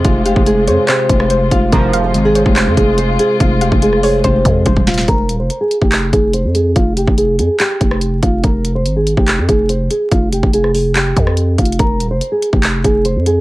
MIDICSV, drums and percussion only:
0, 0, Header, 1, 2, 480
1, 0, Start_track
1, 0, Key_signature, -4, "minor"
1, 0, Tempo, 419580
1, 53, Time_signature, 4, 2, 24, 8
1, 15336, End_track
2, 0, Start_track
2, 0, Title_t, "Drums"
2, 51, Note_on_c, 9, 42, 76
2, 53, Note_on_c, 9, 36, 125
2, 166, Note_off_c, 9, 42, 0
2, 167, Note_off_c, 9, 36, 0
2, 292, Note_on_c, 9, 42, 92
2, 406, Note_off_c, 9, 42, 0
2, 413, Note_on_c, 9, 36, 106
2, 528, Note_off_c, 9, 36, 0
2, 531, Note_on_c, 9, 42, 76
2, 645, Note_off_c, 9, 42, 0
2, 773, Note_on_c, 9, 42, 77
2, 887, Note_off_c, 9, 42, 0
2, 1010, Note_on_c, 9, 42, 77
2, 1012, Note_on_c, 9, 39, 118
2, 1125, Note_off_c, 9, 42, 0
2, 1127, Note_off_c, 9, 39, 0
2, 1253, Note_on_c, 9, 36, 98
2, 1253, Note_on_c, 9, 42, 74
2, 1367, Note_off_c, 9, 36, 0
2, 1368, Note_off_c, 9, 42, 0
2, 1373, Note_on_c, 9, 37, 105
2, 1487, Note_off_c, 9, 37, 0
2, 1488, Note_on_c, 9, 42, 76
2, 1603, Note_off_c, 9, 42, 0
2, 1732, Note_on_c, 9, 36, 89
2, 1732, Note_on_c, 9, 42, 80
2, 1847, Note_off_c, 9, 36, 0
2, 1847, Note_off_c, 9, 42, 0
2, 1972, Note_on_c, 9, 42, 75
2, 1973, Note_on_c, 9, 36, 127
2, 2086, Note_off_c, 9, 42, 0
2, 2087, Note_off_c, 9, 36, 0
2, 2212, Note_on_c, 9, 42, 92
2, 2327, Note_off_c, 9, 42, 0
2, 2451, Note_on_c, 9, 42, 79
2, 2565, Note_off_c, 9, 42, 0
2, 2693, Note_on_c, 9, 42, 78
2, 2807, Note_off_c, 9, 42, 0
2, 2813, Note_on_c, 9, 36, 102
2, 2927, Note_off_c, 9, 36, 0
2, 2930, Note_on_c, 9, 42, 79
2, 2932, Note_on_c, 9, 39, 121
2, 3045, Note_off_c, 9, 42, 0
2, 3046, Note_off_c, 9, 39, 0
2, 3172, Note_on_c, 9, 36, 104
2, 3173, Note_on_c, 9, 42, 76
2, 3287, Note_off_c, 9, 36, 0
2, 3288, Note_off_c, 9, 42, 0
2, 3408, Note_on_c, 9, 42, 78
2, 3523, Note_off_c, 9, 42, 0
2, 3652, Note_on_c, 9, 42, 79
2, 3767, Note_off_c, 9, 42, 0
2, 3892, Note_on_c, 9, 42, 76
2, 3893, Note_on_c, 9, 36, 126
2, 4006, Note_off_c, 9, 42, 0
2, 4007, Note_off_c, 9, 36, 0
2, 4132, Note_on_c, 9, 42, 88
2, 4246, Note_off_c, 9, 42, 0
2, 4253, Note_on_c, 9, 36, 105
2, 4368, Note_off_c, 9, 36, 0
2, 4371, Note_on_c, 9, 42, 76
2, 4485, Note_off_c, 9, 42, 0
2, 4493, Note_on_c, 9, 37, 63
2, 4607, Note_off_c, 9, 37, 0
2, 4613, Note_on_c, 9, 46, 55
2, 4727, Note_off_c, 9, 46, 0
2, 4851, Note_on_c, 9, 42, 80
2, 4853, Note_on_c, 9, 36, 65
2, 4965, Note_off_c, 9, 42, 0
2, 4967, Note_off_c, 9, 36, 0
2, 5093, Note_on_c, 9, 36, 79
2, 5094, Note_on_c, 9, 42, 75
2, 5207, Note_off_c, 9, 36, 0
2, 5208, Note_off_c, 9, 42, 0
2, 5328, Note_on_c, 9, 42, 76
2, 5333, Note_on_c, 9, 36, 92
2, 5442, Note_off_c, 9, 42, 0
2, 5447, Note_off_c, 9, 36, 0
2, 5453, Note_on_c, 9, 36, 90
2, 5567, Note_off_c, 9, 36, 0
2, 5572, Note_on_c, 9, 46, 63
2, 5573, Note_on_c, 9, 38, 111
2, 5573, Note_on_c, 9, 42, 67
2, 5653, Note_off_c, 9, 42, 0
2, 5653, Note_on_c, 9, 42, 69
2, 5687, Note_off_c, 9, 38, 0
2, 5687, Note_off_c, 9, 46, 0
2, 5693, Note_on_c, 9, 38, 100
2, 5733, Note_off_c, 9, 42, 0
2, 5733, Note_on_c, 9, 42, 66
2, 5807, Note_off_c, 9, 38, 0
2, 5812, Note_off_c, 9, 42, 0
2, 5812, Note_on_c, 9, 42, 72
2, 5813, Note_on_c, 9, 36, 123
2, 5926, Note_off_c, 9, 42, 0
2, 5927, Note_off_c, 9, 36, 0
2, 6053, Note_on_c, 9, 42, 87
2, 6167, Note_off_c, 9, 42, 0
2, 6291, Note_on_c, 9, 42, 75
2, 6406, Note_off_c, 9, 42, 0
2, 6533, Note_on_c, 9, 42, 77
2, 6647, Note_off_c, 9, 42, 0
2, 6653, Note_on_c, 9, 36, 100
2, 6767, Note_off_c, 9, 36, 0
2, 6771, Note_on_c, 9, 42, 75
2, 6772, Note_on_c, 9, 39, 118
2, 6885, Note_off_c, 9, 42, 0
2, 6887, Note_off_c, 9, 39, 0
2, 7012, Note_on_c, 9, 36, 102
2, 7014, Note_on_c, 9, 42, 72
2, 7127, Note_off_c, 9, 36, 0
2, 7128, Note_off_c, 9, 42, 0
2, 7248, Note_on_c, 9, 42, 77
2, 7362, Note_off_c, 9, 42, 0
2, 7492, Note_on_c, 9, 42, 77
2, 7606, Note_off_c, 9, 42, 0
2, 7732, Note_on_c, 9, 42, 75
2, 7733, Note_on_c, 9, 36, 122
2, 7846, Note_off_c, 9, 42, 0
2, 7847, Note_off_c, 9, 36, 0
2, 7972, Note_on_c, 9, 42, 86
2, 8086, Note_off_c, 9, 42, 0
2, 8093, Note_on_c, 9, 36, 102
2, 8208, Note_off_c, 9, 36, 0
2, 8211, Note_on_c, 9, 42, 75
2, 8325, Note_off_c, 9, 42, 0
2, 8452, Note_on_c, 9, 42, 76
2, 8567, Note_off_c, 9, 42, 0
2, 8690, Note_on_c, 9, 42, 77
2, 8692, Note_on_c, 9, 39, 122
2, 8805, Note_off_c, 9, 42, 0
2, 8806, Note_off_c, 9, 39, 0
2, 8932, Note_on_c, 9, 36, 99
2, 8933, Note_on_c, 9, 42, 73
2, 9047, Note_off_c, 9, 36, 0
2, 9048, Note_off_c, 9, 42, 0
2, 9053, Note_on_c, 9, 37, 104
2, 9167, Note_off_c, 9, 37, 0
2, 9168, Note_on_c, 9, 42, 72
2, 9282, Note_off_c, 9, 42, 0
2, 9412, Note_on_c, 9, 36, 88
2, 9412, Note_on_c, 9, 42, 79
2, 9526, Note_off_c, 9, 42, 0
2, 9527, Note_off_c, 9, 36, 0
2, 9651, Note_on_c, 9, 42, 75
2, 9653, Note_on_c, 9, 36, 120
2, 9766, Note_off_c, 9, 42, 0
2, 9767, Note_off_c, 9, 36, 0
2, 9892, Note_on_c, 9, 42, 86
2, 10006, Note_off_c, 9, 42, 0
2, 10131, Note_on_c, 9, 42, 77
2, 10245, Note_off_c, 9, 42, 0
2, 10373, Note_on_c, 9, 42, 75
2, 10487, Note_off_c, 9, 42, 0
2, 10493, Note_on_c, 9, 36, 100
2, 10607, Note_off_c, 9, 36, 0
2, 10611, Note_on_c, 9, 42, 76
2, 10613, Note_on_c, 9, 39, 115
2, 10725, Note_off_c, 9, 42, 0
2, 10727, Note_off_c, 9, 39, 0
2, 10853, Note_on_c, 9, 36, 99
2, 10854, Note_on_c, 9, 42, 74
2, 10967, Note_off_c, 9, 36, 0
2, 10968, Note_off_c, 9, 42, 0
2, 11088, Note_on_c, 9, 42, 75
2, 11202, Note_off_c, 9, 42, 0
2, 11332, Note_on_c, 9, 42, 78
2, 11447, Note_off_c, 9, 42, 0
2, 11572, Note_on_c, 9, 42, 73
2, 11573, Note_on_c, 9, 36, 121
2, 11687, Note_off_c, 9, 36, 0
2, 11687, Note_off_c, 9, 42, 0
2, 11812, Note_on_c, 9, 42, 88
2, 11927, Note_off_c, 9, 42, 0
2, 11934, Note_on_c, 9, 36, 102
2, 12048, Note_off_c, 9, 36, 0
2, 12051, Note_on_c, 9, 42, 77
2, 12166, Note_off_c, 9, 42, 0
2, 12173, Note_on_c, 9, 37, 62
2, 12287, Note_off_c, 9, 37, 0
2, 12292, Note_on_c, 9, 46, 52
2, 12407, Note_off_c, 9, 46, 0
2, 12531, Note_on_c, 9, 42, 73
2, 12532, Note_on_c, 9, 39, 120
2, 12645, Note_off_c, 9, 42, 0
2, 12647, Note_off_c, 9, 39, 0
2, 12772, Note_on_c, 9, 36, 99
2, 12773, Note_on_c, 9, 42, 74
2, 12887, Note_off_c, 9, 36, 0
2, 12888, Note_off_c, 9, 42, 0
2, 12892, Note_on_c, 9, 37, 100
2, 13007, Note_off_c, 9, 37, 0
2, 13008, Note_on_c, 9, 42, 72
2, 13122, Note_off_c, 9, 42, 0
2, 13252, Note_on_c, 9, 36, 84
2, 13252, Note_on_c, 9, 46, 61
2, 13253, Note_on_c, 9, 42, 67
2, 13333, Note_off_c, 9, 42, 0
2, 13333, Note_on_c, 9, 42, 65
2, 13366, Note_off_c, 9, 46, 0
2, 13367, Note_off_c, 9, 36, 0
2, 13413, Note_off_c, 9, 42, 0
2, 13413, Note_on_c, 9, 42, 65
2, 13492, Note_off_c, 9, 42, 0
2, 13492, Note_on_c, 9, 42, 73
2, 13493, Note_on_c, 9, 36, 123
2, 13606, Note_off_c, 9, 42, 0
2, 13607, Note_off_c, 9, 36, 0
2, 13732, Note_on_c, 9, 42, 88
2, 13847, Note_off_c, 9, 42, 0
2, 13971, Note_on_c, 9, 42, 75
2, 14085, Note_off_c, 9, 42, 0
2, 14213, Note_on_c, 9, 42, 73
2, 14327, Note_off_c, 9, 42, 0
2, 14333, Note_on_c, 9, 36, 96
2, 14447, Note_off_c, 9, 36, 0
2, 14451, Note_on_c, 9, 42, 78
2, 14452, Note_on_c, 9, 39, 122
2, 14565, Note_off_c, 9, 42, 0
2, 14567, Note_off_c, 9, 39, 0
2, 14693, Note_on_c, 9, 36, 97
2, 14694, Note_on_c, 9, 42, 74
2, 14807, Note_off_c, 9, 36, 0
2, 14808, Note_off_c, 9, 42, 0
2, 14928, Note_on_c, 9, 42, 75
2, 15042, Note_off_c, 9, 42, 0
2, 15172, Note_on_c, 9, 42, 81
2, 15287, Note_off_c, 9, 42, 0
2, 15336, End_track
0, 0, End_of_file